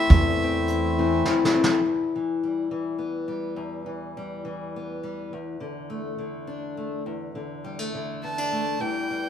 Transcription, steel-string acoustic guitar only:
0.00 0.12 E2 medium
0.00 0.98 E3 medium
0.00 0.69 E4 medium
0.13 1.84 E2 medium
0.44 0.98 C4 medium
0.70 1.26 E4 medium
0.99 1.81 E3 medium
0.99 1.55 C4 medium
1.27 3.57 E4 medium
1.56 1.80 C4 medium
1.86 3.56 E2 soft
2.16 2.71 E3 soft
2.43 3.27 G3 soft
2.71 3.86 E3 soft
2.98 4.73 B3 soft
3.28 4.15 G3 soft
3.56 5.32 E2 medium
3.86 4.44 E3 soft
4.17 5.02 G3 soft
4.45 5.60 E3 soft
4.76 5.33 B3 soft
5.03 5.32 G3 soft
5.33 7.06 E2 medium
5.60 6.17 D3 medium
5.90 6.76 A3 soft
6.18 7.34 D3 soft
6.47 7.02 D4 soft
6.77 7.02 A3 soft
7.06 8.78 E2 medium
7.35 7.93 D3 soft
7.64 7.79 G3 soft
7.79 8.51 A3 soft
7.94 8.80 D3 soft
8.24 8.38 B3 soft
8.38 8.80 D4 soft
8.52 8.77 A3 soft
8.79 9.29 E2 medium
8.79 9.29 E3 soft
8.79 9.10 G3 soft
8.79 9.29 B3 soft
8.79 9.29 G4 soft
9.11 9.29 G3 soft

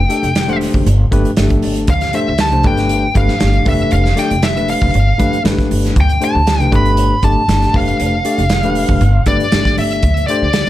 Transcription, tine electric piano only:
0.09 0.28 A3 medium
0.09 0.28 D4 medium
0.09 0.28 G4 medium
0.09 0.28 A4 loud
0.48 0.86 A3 medium
0.48 0.86 D4 medium
0.48 0.87 G4 medium
0.48 0.87 C5 medium
1.11 1.30 A3 loud
1.11 1.30 D4 medium
1.11 1.30 G4 loud
1.11 1.31 B4 loud
1.37 1.88 A3 medium
1.37 1.88 D4 medium
1.37 1.89 G4 medium
1.37 1.89 A4 medium
1.37 1.61 E5 medium
1.63 1.87 A5 medium
2.13 2.32 A3 medium
2.13 2.32 D4 medium
2.13 2.32 G4 medium
2.13 2.33 C5 medium
2.51 2.63 A3 medium
2.51 2.63 D4 medium
2.51 2.63 G4 medium
2.51 2.65 C5 medium
2.64 3.06 A3 medium
2.64 3.06 D4 medium
2.64 3.06 G4 medium
2.64 3.06 B4 medium
3.15 3.33 A3 medium
3.15 3.34 D4 medium
3.15 3.34 G4 medium
3.15 3.34 B4 medium
3.40 3.64 A3 medium
3.40 3.64 D4 medium
3.40 3.65 G4 medium
3.40 3.67 D5 medium
3.65 4.07 A3 medium
3.65 4.07 D4 medium
3.65 4.08 G4 medium
3.65 4.08 B4 medium
4.16 4.35 A3 medium
4.16 4.35 D4 medium
4.16 4.35 G4 medium
4.16 4.36 D5 loud
4.56 4.94 A3 medium
4.56 4.94 D4 medium
4.56 4.94 G4 medium
4.56 4.94 B4 medium
5.18 5.37 A3 medium
5.18 5.37 D4 medium
5.18 5.37 G4 medium
5.18 5.38 B4 medium
5.44 5.95 A3 medium
5.44 5.95 D4 medium
5.44 5.96 G4 medium
5.44 5.96 B4 medium
6.20 6.39 A3 medium
6.20 6.39 D4 medium
6.20 6.40 G4 medium
6.20 6.40 C5 medium
6.47 6.53 G4 soft
6.47 6.54 C5 soft
6.60 6.70 A3 medium
6.60 6.71 D4 medium
6.60 6.71 G4 medium
6.60 6.71 B4 medium
6.72 7.13 A3 medium
6.72 7.13 D4 medium
6.72 7.14 G4 medium
6.72 7.14 B4 medium
7.23 7.41 A3 medium
7.23 7.41 D4 medium
7.23 7.42 G4 medium
7.23 7.42 D5 loud
7.48 7.72 A3 medium
7.48 7.73 D4 medium
7.48 7.73 G4 medium
7.48 7.75 D5 medium
7.73 8.15 A3 medium
7.73 8.15 D4 medium
7.73 8.15 G4 medium
7.73 8.15 B4 medium
8.25 8.43 A3 medium
8.25 8.43 D4 medium
8.25 8.43 G4 medium
8.25 8.44 D5 loud
8.51 8.57 B4 soft
8.64 9.01 A3 medium
8.64 9.02 D4 medium
8.64 9.02 G4 medium
8.64 9.02 B4 medium
9.26 9.45 A3 medium
9.26 9.45 D4 medium
9.26 9.45 G4 medium
9.26 9.46 B4 medium
9.53 10.04 A3 medium
9.53 10.04 D4 medium
9.53 10.04 G4 medium
9.53 10.04 D5 medium
10.29 10.47 A3 medium
10.29 10.47 D4 medium
10.29 10.47 G4 medium
10.29 10.48 C5 loud
10.53 10.60 G4 soft
10.53 10.61 C5 soft

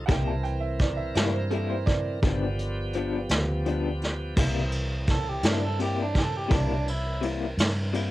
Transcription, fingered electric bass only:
0.08 1.11 C2 medium
1.16 2.19 G2 medium
2.22 3.25 G1 medium
3.30 4.33 D2 medium
4.36 5.40 C2 medium
5.43 6.47 G2 medium
6.50 7.54 C2 medium
7.58 8.11 G2 loud

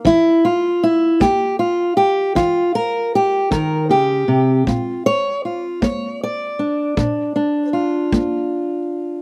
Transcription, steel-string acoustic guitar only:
0.05 0.74 E3 medium
0.05 0.44 E4 loud
0.45 0.83 F4 medium
0.83 1.21 E4 medium
1.20 1.90 A#3 medium
1.20 1.59 G4 loud
1.59 1.96 F4 medium
1.97 2.36 G4 medium
2.35 3.05 E3 medium
2.35 2.75 F4 medium
2.75 3.13 A#4 loud
3.15 3.52 G4 medium
3.51 3.90 D#3 medium
3.51 3.90 A#4 medium
3.89 4.28 C#3 medium
3.89 4.67 G4 medium
4.28 4.66 C3 medium
4.67 5.36 A#2 medium
4.67 5.06 F4 soft
5.06 5.44 C#5 loud
5.45 5.84 F4 soft
5.82 6.51 A#3 medium
5.82 6.21 C#5 medium
6.23 7.73 D5 medium
6.59 6.96 D4 soft
6.97 7.66 A#2 medium
6.97 7.34 D4 soft
7.36 9.22 D4 medium
7.73 9.22 F4 medium
8.13 8.82 A#3 medium

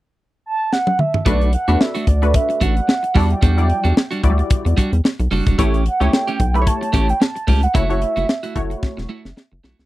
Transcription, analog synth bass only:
1.26 1.56 B1 loud
1.68 1.77 E2 medium
2.07 2.37 D2 medium
2.61 2.80 A1 medium
3.15 3.35 E2 medium
3.43 3.73 E2 loud
3.85 3.93 E2 medium
4.24 4.43 D2 medium
4.66 4.74 E2 medium
4.93 5.01 E2 medium
5.20 5.28 B1 medium
5.32 5.42 F#1 medium
5.47 5.55 E1 medium
5.59 5.89 A1 loud
6.01 6.09 C#2 medium
6.40 6.70 B1 loud
6.94 7.13 A1 medium
7.48 7.67 C#2 loud
7.75 8.05 F#1 loud
8.17 8.25 F#1 medium
8.56 8.75 F#1 medium
8.98 9.07 E1 medium
9.25 9.34 F#1 medium
9.52 9.61 F#1 medium
9.64 9.75 B1 medium
9.79 9.86 C#2 medium

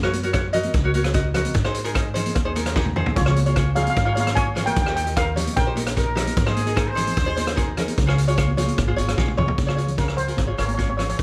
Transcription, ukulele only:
0.03 0.16 F#4 medium
0.03 0.16 A#4 medium
0.03 0.16 C#5 medium
0.23 0.30 F#4 medium
0.23 0.30 A#4 medium
0.23 0.30 C#5 medium
0.33 0.46 F#4 medium
0.33 0.46 A#4 medium
0.33 0.46 C#5 medium
0.53 0.72 F#4 medium
0.53 0.72 A#4 medium
0.53 0.72 D#5 loud
0.84 0.90 F#4 medium
0.84 0.90 A#4 medium
0.84 0.90 C#5 medium
0.94 1.07 F#4 medium
0.94 1.07 A#4 medium
0.94 1.07 C#5 medium
1.14 1.27 F#4 medium
1.14 1.27 A#4 medium
1.14 1.27 D#5 loud
1.35 1.53 F#4 medium
1.35 1.53 A#4 medium
1.35 1.53 D#5 medium
1.65 1.77 D#4 medium
1.65 1.77 G#4 medium
1.65 1.77 C5 loud
1.84 1.91 D#4 medium
1.84 1.91 G#4 medium
1.84 1.91 A#4 loud
1.94 2.07 D#4 medium
1.94 2.07 G#4 medium
1.94 2.07 D#5 medium
2.14 2.33 D#4 medium
2.14 2.33 G#4 medium
2.14 2.33 C5 medium
2.45 2.51 D#4 medium
2.45 2.51 G#4 medium
2.45 2.51 C5 medium
2.55 2.68 D#4 medium
2.55 2.67 G#4 medium
2.55 2.68 A#4 medium
2.76 2.88 D#4 medium
2.76 2.88 G#4 medium
2.76 2.88 A#4 medium
2.96 3.14 D#4 medium
2.96 3.14 G#4 medium
2.96 3.14 C5 medium
3.26 3.38 F4 medium
3.26 3.38 G#4 medium
3.26 3.38 C#5 medium
3.46 3.52 F4 medium
3.46 3.52 G#4 medium
3.46 3.52 C#5 medium
3.56 3.68 F4 medium
3.56 3.68 G#4 medium
3.56 3.68 C#5 medium
3.76 3.94 F4 medium
3.76 3.94 G#4 medium
3.76 3.94 C#5 medium
4.06 4.12 F4 medium
4.06 4.12 G#4 medium
4.06 4.12 C#5 medium
4.15 4.28 F4 medium
4.15 4.28 G#4 medium
4.15 4.28 C#5 medium
4.35 4.48 F4 medium
4.35 4.48 G#4 medium
4.35 4.48 C#5 medium
4.55 4.74 F4 medium
4.55 4.74 G#4 medium
4.55 4.74 C#5 medium
4.86 4.98 D#4 medium
4.86 4.98 G4 medium
4.86 4.98 A#4 medium
5.06 5.12 D#4 medium
5.06 5.12 G4 medium
5.06 5.12 A#4 medium
5.16 5.28 D#4 medium
5.16 5.28 G4 medium
5.16 5.28 A#4 medium
5.36 5.54 D#4 medium
5.36 5.54 G4 medium
5.36 5.54 C#5 medium
5.67 5.73 D#4 medium
5.67 5.72 G4 medium
5.67 5.73 C5 medium
5.75 5.88 D#4 medium
5.75 5.88 G4 medium
5.75 5.88 A#4 medium
5.96 6.09 D#4 medium
5.96 6.08 G4 medium
5.96 6.09 A#4 medium
6.15 6.34 D#4 medium
6.15 6.34 G4 medium
6.15 6.34 A#4 loud
6.46 6.59 D#4 medium
6.46 6.59 G#4 medium
6.46 6.59 C5 medium
6.66 6.73 D#4 medium
6.66 6.73 G#4 medium
6.66 6.73 A#4 medium
6.76 6.89 D#4 medium
6.76 6.88 G#4 medium
6.76 6.88 A#4 loud
6.95 7.14 D#4 medium
6.95 7.14 G#4 medium
6.95 7.15 C5 loud
7.26 7.33 D#4 medium
7.26 7.33 G#4 medium
7.26 7.33 C5 loud
7.36 7.49 D#4 medium
7.36 7.49 G#4 medium
7.36 7.49 C5 loud
7.56 7.69 D#4 medium
7.56 7.69 G#4 medium
7.56 7.69 A#4 loud
7.77 7.95 D#4 medium
7.77 7.95 G#4 medium
7.77 7.95 A#4 medium
8.06 8.19 F4 medium
8.06 8.19 G#4 medium
8.06 8.19 C#5 medium
8.28 8.34 F4 medium
8.28 8.34 G#4 medium
8.28 8.34 C#5 medium
8.37 8.50 F4 medium
8.37 8.50 G#4 medium
8.37 8.50 C#5 loud
8.57 8.75 F4 medium
8.57 8.76 G#4 medium
8.57 8.76 C#5 medium
8.87 8.94 F4 medium
8.87 8.94 G#4 medium
8.87 8.94 C5 medium
8.96 9.10 F4 medium
8.96 9.09 G#4 medium
8.96 9.09 C#5 loud
9.17 9.30 F4 medium
9.17 9.30 G#4 medium
9.17 9.30 C#5 medium
9.37 9.56 F4 medium
9.37 9.56 G#4 medium
9.37 9.56 C#5 medium
9.67 9.74 F4 medium
9.67 9.74 G#4 medium
9.67 9.74 C#5 medium
9.76 9.90 F4 medium
9.76 9.90 G#4 medium
9.76 9.90 C#5 medium
9.97 10.16 F4 medium
9.97 10.16 G#4 medium
9.97 10.16 C#5 medium
10.27 10.40 F4 medium
10.27 10.40 G#4 medium
10.27 10.40 A#4 medium
10.47 10.54 F4 medium
10.47 10.54 G#4 medium
10.47 10.54 C#5 medium
10.57 10.70 F4 medium
10.57 10.70 G#4 soft
10.57 10.71 A#4 medium
10.77 10.90 F4 medium
10.77 10.90 G#4 medium
10.77 10.90 C#5 medium
10.97 11.17 F4 medium
10.97 11.17 G#4 medium
10.97 11.17 C#5 medium

